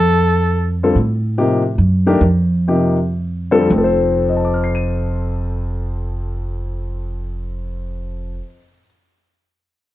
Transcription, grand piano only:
0.83 0.95 D3 medium
0.83 0.96 G3 medium
0.83 0.96 C4 medium
0.83 0.96 F4 medium
0.83 0.96 A4 medium
1.38 1.61 C3 medium
1.38 1.61 F3 medium
1.38 1.61 A#3 medium
1.38 1.61 D#4 medium
1.38 1.61 G4 medium
2.06 2.20 D#3 medium
2.06 2.20 A3 medium
2.06 2.20 D4 medium
2.06 2.21 G4 medium
2.06 2.21 A#4 medium
2.68 2.96 C3 medium
2.68 2.96 F3 medium
2.68 2.96 A#3 soft
2.68 2.96 D#4 medium
2.68 2.96 G4 medium
3.51 3.69 D3 medium
3.51 3.69 G3 medium
3.51 3.69 C4 medium
3.51 3.70 F4 medium
3.51 3.70 A4 medium
3.59 8.32 F2 medium
3.65 8.38 F3 medium
3.72 8.45 C4 medium
3.78 8.51 A4 medium
3.84 8.57 C5 medium
4.29 8.61 D#5 soft
4.37 8.65 A5 soft
4.45 8.69 D6 soft
4.54 8.73 F6 soft
4.64 8.78 C7 soft
4.75 8.84 D#7 soft

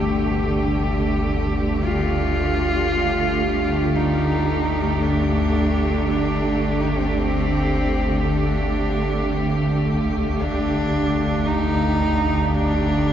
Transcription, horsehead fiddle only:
0.00 0.73 G4 loud
1.82 3.97 F4 loud
3.95 5.04 D#4 medium
5.02 6.08 D4 medium
6.09 6.82 D4 medium
6.80 6.90 D#4 medium
6.88 6.99 D4 medium
6.97 7.07 C4 medium
7.06 7.20 D4 medium
7.18 8.25 C4 medium
8.24 9.84 D4 medium
10.38 11.48 D4 loud
11.46 12.56 D#4 loud
12.55 13.13 D4 loud

